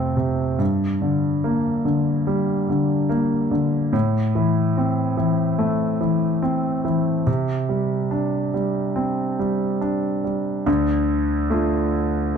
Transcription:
0, 0, Header, 1, 2, 480
1, 0, Start_track
1, 0, Tempo, 835655
1, 346, Time_signature, 4, 2, 24, 8
1, 4183, Tempo, 849858
1, 7058, End_track
2, 0, Start_track
2, 0, Title_t, "Grand piano"
2, 0, Program_c, 0, 0
2, 0, Control_c, 0, 64, 127
2, 0, Note_on_c, 0, 41, 53
2, 0, Note_on_c, 0, 48, 42
2, 0, Note_on_c, 0, 57, 44
2, 0, Note_on_c, 0, 60, 47
2, 87, Note_off_c, 0, 48, 0
2, 96, Note_on_c, 0, 48, 42
2, 318, Note_off_c, 0, 57, 0
2, 320, Note_off_c, 0, 41, 0
2, 325, Note_off_c, 0, 60, 0
2, 334, Note_off_c, 0, 48, 0
2, 336, Note_on_c, 0, 43, 56
2, 354, Control_c, 0, 64, 0
2, 470, Control_c, 0, 64, 127
2, 584, Note_on_c, 0, 50, 41
2, 828, Note_on_c, 0, 58, 45
2, 1054, Note_off_c, 0, 50, 0
2, 1063, Note_on_c, 0, 50, 42
2, 1303, Note_on_c, 0, 55, 47
2, 1539, Note_off_c, 0, 50, 0
2, 1548, Note_on_c, 0, 50, 44
2, 1762, Note_off_c, 0, 58, 0
2, 1777, Note_on_c, 0, 58, 47
2, 2009, Note_off_c, 0, 50, 0
2, 2017, Note_on_c, 0, 50, 42
2, 2235, Note_off_c, 0, 43, 0
2, 2238, Note_off_c, 0, 55, 0
2, 2244, Note_off_c, 0, 58, 0
2, 2252, Note_off_c, 0, 50, 0
2, 2255, Note_on_c, 0, 45, 60
2, 2271, Control_c, 0, 64, 0
2, 2384, Control_c, 0, 64, 127
2, 2500, Note_on_c, 0, 52, 45
2, 2742, Note_on_c, 0, 60, 47
2, 2963, Note_off_c, 0, 52, 0
2, 2971, Note_on_c, 0, 52, 43
2, 3209, Note_on_c, 0, 57, 50
2, 3442, Note_off_c, 0, 52, 0
2, 3450, Note_on_c, 0, 52, 47
2, 3676, Note_off_c, 0, 60, 0
2, 3690, Note_on_c, 0, 60, 48
2, 3924, Note_off_c, 0, 52, 0
2, 3932, Note_on_c, 0, 52, 42
2, 4152, Note_off_c, 0, 57, 0
2, 4153, Note_off_c, 0, 45, 0
2, 4161, Note_off_c, 0, 60, 0
2, 4169, Note_off_c, 0, 52, 0
2, 4174, Note_on_c, 0, 48, 56
2, 4188, Control_c, 0, 64, 0
2, 4283, Control_c, 0, 64, 127
2, 4413, Note_on_c, 0, 55, 41
2, 4650, Note_on_c, 0, 62, 43
2, 4884, Note_off_c, 0, 55, 0
2, 4892, Note_on_c, 0, 55, 40
2, 5129, Note_on_c, 0, 60, 42
2, 5367, Note_off_c, 0, 55, 0
2, 5375, Note_on_c, 0, 55, 41
2, 5591, Note_off_c, 0, 62, 0
2, 5613, Note_on_c, 0, 62, 42
2, 5846, Note_off_c, 0, 55, 0
2, 5854, Note_on_c, 0, 55, 36
2, 6074, Note_off_c, 0, 48, 0
2, 6074, Note_off_c, 0, 60, 0
2, 6083, Note_off_c, 0, 62, 0
2, 6090, Note_off_c, 0, 55, 0
2, 6093, Note_on_c, 0, 38, 61
2, 6093, Note_on_c, 0, 50, 66
2, 6107, Control_c, 0, 64, 0
2, 6195, Control_c, 0, 64, 127
2, 6567, Note_on_c, 0, 57, 45
2, 6571, Note_on_c, 0, 62, 41
2, 6574, Note_on_c, 0, 65, 50
2, 7038, Note_off_c, 0, 57, 0
2, 7040, Note_off_c, 0, 62, 0
2, 7042, Note_off_c, 0, 65, 0
2, 7058, Note_off_c, 0, 38, 0
2, 7058, Note_off_c, 0, 50, 0
2, 7058, End_track
0, 0, End_of_file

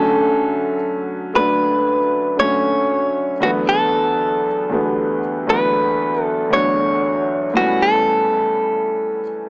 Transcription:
0, 0, Header, 1, 3, 480
1, 0, Start_track
1, 0, Tempo, 1034483
1, 1827, Time_signature, 4, 2, 24, 8
1, 4403, End_track
2, 0, Start_track
2, 0, Title_t, "Clean electric guitar"
2, 0, Program_c, 0, 27
2, 0, Note_on_c, 0, 69, 76
2, 611, Note_off_c, 0, 69, 0
2, 631, Note_on_c, 0, 71, 90
2, 1110, Note_off_c, 0, 71, 0
2, 1112, Note_on_c, 0, 73, 94
2, 1592, Note_on_c, 0, 66, 76
2, 1604, Note_off_c, 0, 73, 0
2, 1623, Note_off_c, 0, 66, 0
2, 1711, Note_on_c, 0, 69, 82
2, 2277, Note_off_c, 0, 69, 0
2, 2277, Note_on_c, 0, 67, 82
2, 2550, Note_off_c, 0, 67, 0
2, 2551, Note_on_c, 0, 71, 86
2, 2895, Note_off_c, 0, 71, 0
2, 2895, Note_on_c, 0, 69, 86
2, 3030, Note_off_c, 0, 69, 0
2, 3032, Note_on_c, 0, 73, 91
2, 3491, Note_off_c, 0, 73, 0
2, 3511, Note_on_c, 0, 66, 81
2, 3631, Note_on_c, 0, 69, 90
2, 3632, Note_off_c, 0, 66, 0
2, 4403, Note_off_c, 0, 69, 0
2, 4403, End_track
3, 0, Start_track
3, 0, Title_t, "Grand piano"
3, 0, Program_c, 1, 0
3, 0, Note_on_c, 1, 50, 86
3, 0, Note_on_c, 1, 54, 84
3, 0, Note_on_c, 1, 57, 78
3, 0, Note_on_c, 1, 61, 101
3, 4, Control_c, 1, 64, 127
3, 341, Note_off_c, 1, 50, 0
3, 344, Note_off_c, 1, 54, 0
3, 347, Note_off_c, 1, 57, 0
3, 350, Note_off_c, 1, 61, 0
3, 620, Note_on_c, 1, 50, 74
3, 626, Note_on_c, 1, 54, 65
3, 632, Note_on_c, 1, 57, 67
3, 639, Note_on_c, 1, 62, 75
3, 915, Note_off_c, 1, 50, 0
3, 918, Note_off_c, 1, 54, 0
3, 921, Note_off_c, 1, 57, 0
3, 925, Note_off_c, 1, 62, 0
3, 1100, Note_on_c, 1, 50, 66
3, 1106, Note_on_c, 1, 54, 59
3, 1112, Note_on_c, 1, 57, 65
3, 1119, Note_on_c, 1, 61, 78
3, 1541, Note_off_c, 1, 50, 0
3, 1544, Note_off_c, 1, 54, 0
3, 1547, Note_off_c, 1, 57, 0
3, 1550, Note_off_c, 1, 61, 0
3, 1579, Note_on_c, 1, 40, 72
3, 1584, Note_on_c, 1, 50, 67
3, 1589, Note_on_c, 1, 54, 67
3, 1592, Control_c, 1, 64, 0
3, 1593, Note_on_c, 1, 57, 62
3, 1598, Note_on_c, 1, 59, 84
3, 1674, Control_c, 1, 64, 127
3, 2063, Note_off_c, 1, 40, 0
3, 2065, Note_off_c, 1, 50, 0
3, 2068, Note_off_c, 1, 54, 0
3, 2070, Note_off_c, 1, 57, 0
3, 2072, Note_off_c, 1, 59, 0
3, 2179, Note_on_c, 1, 40, 66
3, 2184, Note_on_c, 1, 50, 62
3, 2188, Note_on_c, 1, 54, 63
3, 2193, Note_on_c, 1, 57, 61
3, 2197, Note_on_c, 1, 59, 72
3, 2401, Note_off_c, 1, 40, 0
3, 2404, Note_off_c, 1, 50, 0
3, 2406, Note_off_c, 1, 54, 0
3, 2409, Note_off_c, 1, 57, 0
3, 2411, Note_off_c, 1, 59, 0
3, 2538, Note_on_c, 1, 40, 73
3, 2543, Note_on_c, 1, 50, 66
3, 2548, Note_on_c, 1, 54, 64
3, 2552, Note_on_c, 1, 57, 66
3, 2557, Note_on_c, 1, 59, 77
3, 2834, Note_off_c, 1, 40, 0
3, 2837, Note_off_c, 1, 50, 0
3, 2839, Note_off_c, 1, 54, 0
3, 2841, Note_off_c, 1, 57, 0
3, 2843, Note_off_c, 1, 59, 0
3, 3018, Note_on_c, 1, 40, 68
3, 3023, Note_on_c, 1, 50, 62
3, 3028, Note_on_c, 1, 54, 63
3, 3032, Note_on_c, 1, 57, 62
3, 3037, Note_on_c, 1, 62, 79
3, 3460, Note_off_c, 1, 40, 0
3, 3462, Note_off_c, 1, 50, 0
3, 3465, Note_off_c, 1, 54, 0
3, 3467, Note_off_c, 1, 57, 0
3, 3469, Note_off_c, 1, 62, 0
3, 3497, Note_on_c, 1, 45, 75
3, 3502, Note_on_c, 1, 52, 66
3, 3507, Note_on_c, 1, 55, 71
3, 3512, Control_c, 1, 64, 0
3, 3512, Note_on_c, 1, 59, 67
3, 3516, Note_on_c, 1, 61, 81
3, 3587, Control_c, 1, 64, 127
3, 4270, Note_off_c, 1, 45, 0
3, 4272, Note_off_c, 1, 52, 0
3, 4275, Note_off_c, 1, 55, 0
3, 4277, Note_off_c, 1, 59, 0
3, 4279, Note_off_c, 1, 61, 0
3, 4403, End_track
0, 0, End_of_file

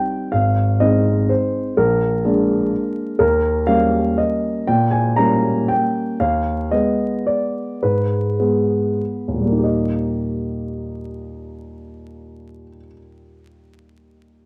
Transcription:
0, 0, Header, 1, 2, 480
1, 0, Start_track
1, 0, Key_signature, -3, "major"
1, 0, Tempo, 477707
1, 331, Time_signature, 3, 2, 24, 8
1, 3690, Tempo, 507185
1, 6570, Tempo, 557621
1, 8010, Tempo, 625652
1, 8970, Tempo, 575264
1, 11370, Tempo, 537153
1, 13105, End_track
2, 0, Start_track
2, 0, Title_t, "Grand piano"
2, 0, Program_c, 0, 0
2, 0, Note_on_c, 0, 55, 33
2, 0, Note_on_c, 0, 60, 30
2, 0, Note_on_c, 0, 63, 34
2, 0, Note_on_c, 0, 79, 54
2, 300, Note_off_c, 0, 55, 0
2, 303, Note_off_c, 0, 60, 0
2, 304, Note_off_c, 0, 63, 0
2, 320, Note_on_c, 0, 77, 57
2, 331, Note_on_c, 0, 32, 41
2, 333, Note_off_c, 0, 79, 0
2, 529, Control_c, 0, 64, 127
2, 794, Note_off_c, 0, 32, 0
2, 803, Note_off_c, 0, 77, 0
2, 805, Note_on_c, 0, 75, 60
2, 808, Note_on_c, 0, 56, 30
2, 817, Note_on_c, 0, 60, 32
2, 817, Note_on_c, 0, 63, 36
2, 1300, Note_on_c, 0, 72, 50
2, 1301, Note_off_c, 0, 75, 0
2, 1314, Control_c, 0, 64, 0
2, 1741, Note_off_c, 0, 56, 0
2, 1745, Note_off_c, 0, 60, 0
2, 1746, Note_off_c, 0, 63, 0
2, 1780, Note_off_c, 0, 72, 0
2, 1781, Note_on_c, 0, 70, 55
2, 1787, Note_on_c, 0, 34, 43
2, 1995, Control_c, 0, 64, 127
2, 2238, Note_off_c, 0, 34, 0
2, 2259, Note_on_c, 0, 56, 33
2, 2259, Note_on_c, 0, 58, 30
2, 2266, Note_on_c, 0, 62, 33
2, 2732, Control_c, 0, 64, 0
2, 3171, Note_off_c, 0, 56, 0
2, 3171, Note_off_c, 0, 58, 0
2, 3175, Note_off_c, 0, 62, 0
2, 3190, Note_off_c, 0, 70, 0
2, 3206, Note_on_c, 0, 70, 59
2, 3215, Note_on_c, 0, 39, 45
2, 3397, Control_c, 0, 64, 127
2, 3681, Note_off_c, 0, 39, 0
2, 3686, Note_on_c, 0, 77, 65
2, 3690, Note_off_c, 0, 70, 0
2, 3696, Note_on_c, 0, 55, 34
2, 3699, Note_on_c, 0, 58, 31
2, 3699, Note_on_c, 0, 61, 33
2, 4166, Note_off_c, 0, 77, 0
2, 4167, Note_on_c, 0, 75, 49
2, 4179, Control_c, 0, 64, 0
2, 4603, Note_off_c, 0, 55, 0
2, 4605, Note_off_c, 0, 58, 0
2, 4605, Note_off_c, 0, 61, 0
2, 4638, Note_off_c, 0, 75, 0
2, 4638, Note_on_c, 0, 79, 64
2, 4647, Note_on_c, 0, 46, 48
2, 4796, Control_c, 0, 64, 127
2, 4862, Note_on_c, 0, 80, 60
2, 4870, Note_off_c, 0, 79, 0
2, 5100, Note_off_c, 0, 46, 0
2, 5102, Note_on_c, 0, 82, 68
2, 5106, Note_off_c, 0, 80, 0
2, 5110, Note_on_c, 0, 55, 31
2, 5118, Note_on_c, 0, 61, 32
2, 5119, Note_on_c, 0, 58, 36
2, 5593, Note_on_c, 0, 79, 57
2, 5596, Note_off_c, 0, 82, 0
2, 5612, Control_c, 0, 64, 0
2, 6045, Note_off_c, 0, 55, 0
2, 6050, Note_off_c, 0, 58, 0
2, 6050, Note_off_c, 0, 61, 0
2, 6080, Note_off_c, 0, 79, 0
2, 6081, Note_on_c, 0, 77, 58
2, 6087, Note_on_c, 0, 39, 42
2, 6267, Control_c, 0, 64, 127
2, 6557, Note_off_c, 0, 39, 0
2, 6569, Note_off_c, 0, 77, 0
2, 6569, Note_on_c, 0, 75, 56
2, 6575, Note_on_c, 0, 56, 31
2, 6581, Note_on_c, 0, 59, 35
2, 6583, Control_c, 0, 64, 0
2, 7043, Note_on_c, 0, 74, 49
2, 7048, Note_off_c, 0, 75, 0
2, 7494, Note_off_c, 0, 56, 0
2, 7497, Note_off_c, 0, 59, 0
2, 7523, Note_off_c, 0, 74, 0
2, 7526, Note_on_c, 0, 71, 48
2, 7533, Note_on_c, 0, 44, 37
2, 7690, Control_c, 0, 64, 127
2, 8000, Note_off_c, 0, 44, 0
2, 8013, Note_on_c, 0, 56, 28
2, 8017, Note_on_c, 0, 59, 27
2, 8485, Control_c, 0, 64, 0
2, 8694, Note_on_c, 0, 39, 30
2, 8740, Note_on_c, 0, 46, 25
2, 8786, Note_on_c, 0, 55, 26
2, 8829, Note_on_c, 0, 58, 26
2, 8878, Note_on_c, 0, 63, 27
2, 8928, Note_on_c, 0, 67, 25
2, 8941, Note_off_c, 0, 56, 0
2, 8943, Note_off_c, 0, 59, 0
2, 8968, Note_on_c, 0, 75, 35
2, 8971, Note_off_c, 0, 71, 0
2, 9154, Control_c, 0, 64, 127
2, 11466, Note_off_c, 0, 39, 0
2, 11519, Note_off_c, 0, 46, 0
2, 11573, Note_off_c, 0, 55, 0
2, 11624, Note_off_c, 0, 58, 0
2, 11681, Note_off_c, 0, 63, 0
2, 11738, Note_off_c, 0, 67, 0
2, 11785, Note_off_c, 0, 75, 0
2, 13105, End_track
0, 0, End_of_file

